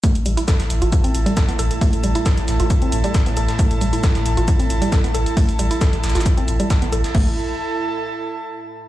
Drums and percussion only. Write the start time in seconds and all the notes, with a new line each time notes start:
0.04 kick, closed hi-hat, shaker
0.15 closed hi-hat
0.26 closed hi-hat, shaker
0.37 closed hi-hat
0.48 kick, snare, closed hi-hat, shaker
0.60 snare, closed hi-hat
0.70 closed hi-hat, shaker
0.82 closed hi-hat
0.92 kick, closed hi-hat, shaker
1.04 closed hi-hat
1.15 closed hi-hat, shaker
1.26 closed hi-hat
1.37 kick, snare, closed hi-hat, shaker
1.49 closed hi-hat
1.59 closed hi-hat, shaker
1.71 closed hi-hat
1.81 kick, closed hi-hat, open hi-hat
1.93 closed hi-hat
2.04 closed hi-hat, shaker
2.15 closed hi-hat
2.26 kick, snare, closed hi-hat, shaker
2.37 closed hi-hat
2.48 snare, closed hi-hat, shaker
2.60 closed hi-hat
2.70 kick, closed hi-hat, shaker
2.82 closed hi-hat
2.92 closed hi-hat, shaker
3.04 closed hi-hat
3.14 kick, snare, closed hi-hat, shaker
3.26 closed hi-hat
3.37 closed hi-hat, shaker
3.48 snare, closed hi-hat
3.59 kick, closed hi-hat, shaker
3.71 closed hi-hat
3.81 closed hi-hat, shaker
3.93 closed hi-hat
4.03 kick, snare, closed hi-hat, shaker
4.15 snare, closed hi-hat
4.26 closed hi-hat, shaker
4.37 closed hi-hat
4.48 kick, closed hi-hat, shaker
4.60 closed hi-hat
4.70 closed hi-hat, shaker
4.82 closed hi-hat
4.92 kick, snare, closed hi-hat, shaker
5.04 closed hi-hat
5.15 closed hi-hat, shaker
5.26 closed hi-hat
5.37 kick, closed hi-hat, open hi-hat
5.49 closed hi-hat
5.59 closed hi-hat, shaker
5.71 closed hi-hat
5.81 kick, snare, closed hi-hat, shaker
5.93 closed hi-hat
6.04 snare, closed hi-hat, shaker
6.09 snare, shaker
6.15 snare, closed hi-hat, shaker
6.21 snare, shaker
6.26 kick, closed hi-hat, shaker
6.37 closed hi-hat
6.48 closed hi-hat, shaker
6.60 closed hi-hat
6.70 kick, snare, closed hi-hat, shaker
6.82 closed hi-hat
6.92 closed hi-hat, shaker
7.04 snare, closed hi-hat
7.15 kick, crash